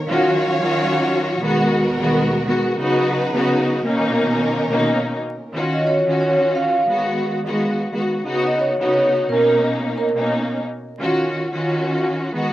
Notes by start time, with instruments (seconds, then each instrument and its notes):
Already playing: string section D#3
0.07 string section D#3 F#3 C#4 F4 F#4 C#5 F5
0.61 string section D#3 C#4 F4 F#4
1.41 string section D#2 B2 D#3 G#3 B3 F#4 A#4
1.98 string section D#3 G#3 B3 F#4
2.46 string section D#3 G#3 B3 F#4
2.77 string section C#3 F#3 B3 D#4 F#4 B4
3.33 string section C#3 B3 D#4 F#4
3.82 string section B2 D#3 A#3 C#4 A#4
3.86 string section D#4
4.68 string section B2 A#3 C#4 D#4
5.53 string section D#3 C#4 F4 F#4
5.73 vibraphone D#5
5.87 vibraphone C#5
6.06 string section D#3 C#4 F4 F#4
6.21 vibraphone C#5
6.55 vibraphone F5
6.86 string section D#3 G#3 B3 F#4
7.44 string section D#3 G#3 B3 F#4
7.91 string section D#3 G#3 B3 F#4
8.22 string section C#3 B3 D#4 F#4
8.47 vibraphone D#5
8.61 vibraphone C#5
8.79 string section C#3 B3 D#4 F#4
8.94 vibraphone C#5
9.29 string section B2 A#3 C#4 D#4, vibraphone A#4
9.98 vibraphone A#4
10.14 string section B2 A#3 C#4 D#4
10.99 string section D#3 C#4 F4 F#4
11.52 string section D#3 C#4 F4 F#4
12.32 string section D#3 G#3 B3 F#4